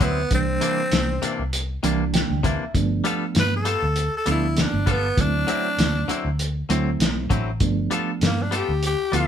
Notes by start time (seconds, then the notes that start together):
Already playing: D2
0.00 D3 F#3 B3 C4 E4, kick, closed hi-hat
0.31 C2 E3 G3 A#3 C4 D4, kick, closed hi-hat
0.61 C3 E3 A#3 D4, closed hi-hat
0.92 C2, snare, closed hi-hat
1.22 C3 E3 A#3 D4, closed hi-hat
1.39 C2
1.53 closed hi-hat
1.83 C2 C3 E3 G3 A#3 D4, closed hi-hat
2.14 G5, snare, closed hi-hat
2.30 D2
2.43 C3 E3 A#3 D4 E5, kick, closed hi-hat
2.75 G1 F3 A3 B3 D4, kick, closed hi-hat
3.04 G3 B3 F4 A4, closed hi-hat
3.35 G2, snare, closed hi-hat
3.40 B4
3.56 A4
3.65 G3 B3 F4 A4, closed hi-hat
3.82 D2
3.96 closed hi-hat
4.17 A4
4.26 D2 F3 G3 A3 B3 D4 F4 A4, closed hi-hat
4.31 E4
4.57 snare, closed hi-hat
4.62 D4
4.73 G1
4.86 G3 B3 F4 A4, kick, closed hi-hat
4.92 B3
5.17 D2 F#3 A3 C4 D4 E4, kick, closed hi-hat
5.47 D3 F#3 C4 E4, closed hi-hat
5.79 D2, snare, closed hi-hat
6.08 D3 F#3 C4 E4, muted fingered electric bass stroke, closed hi-hat
6.25 D2
6.39 closed hi-hat
6.69 D2 D3 F#3 A3 C4 E4, closed hi-hat
7.00 B1, snare, closed hi-hat
7.30 A1 D3 F#3 C4 E4, kick, closed hi-hat
7.60 G1 F3 A3 B3 D4, kick, closed hi-hat
7.91 G3 B3 F4 A4, closed hi-hat
8.21 G2, snare, closed hi-hat
8.26 A#3
8.42 D4
8.51 G3 B3 F4 A4, closed hi-hat
8.56 G4
8.69 D2
8.83 closed hi-hat
8.87 G4
9.12 D2 F3 G3 A3 B3 E4 F4 A4, closed hi-hat